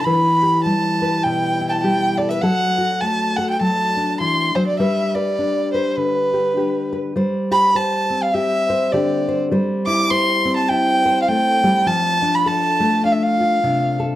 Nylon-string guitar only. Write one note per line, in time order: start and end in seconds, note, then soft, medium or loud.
0.06 2.40 E3 medium
0.06 1.01 B4 medium
0.43 1.83 G4 medium
0.66 1.83 G3 medium
1.02 2.19 B4 medium
1.25 2.40 B2 medium
1.61 2.41 E4 medium
1.84 2.43 G3 medium
1.84 2.40 G4 medium
2.19 2.30 A4 medium
2.31 2.43 B4 soft
2.43 3.59 F#3 medium
2.43 3.37 A4 medium
2.78 4.77 F#4 medium
3.02 4.77 A3 medium
3.38 4.80 A4 medium
3.61 4.20 F#3 medium
3.97 5.38 D4 medium
4.20 4.55 E3 medium
4.55 4.79 F#3 medium
4.80 7.14 G3 medium
4.80 5.14 B4 medium
5.15 5.73 B4 medium
5.39 6.55 D4 medium
5.74 6.91 B4 medium
5.97 7.16 D3 medium
6.33 6.56 G4 medium
6.57 7.13 D4 medium
6.57 7.13 G4 medium
6.93 7.13 B4 medium
7.16 9.50 G3 medium
7.16 7.75 C5 medium
7.51 8.34 G4 medium
7.75 8.69 C5 medium
8.10 10.45 C4 medium
8.35 8.93 G4 medium
8.70 9.28 C5 medium
8.93 9.52 D3 medium
8.93 9.49 G4 medium
9.28 9.52 C5 medium
9.51 11.28 G3 medium
9.51 10.11 C5 medium
9.87 10.69 E4 medium
10.11 11.04 C5 medium
10.45 12.22 C4 medium
10.70 11.87 E4 medium
11.06 11.85 C5 medium
11.28 11.63 A3 medium
11.64 11.87 G3 medium
11.86 14.15 F3 medium
11.86 13.39 F4 medium
12.22 13.05 D4 medium
12.46 13.98 A4 medium
12.80 14.15 A3 medium
13.05 13.64 D4 medium
13.40 14.15 F4 medium
13.63 14.15 C3 medium
13.63 14.15 D4 medium
14.00 14.15 A4 medium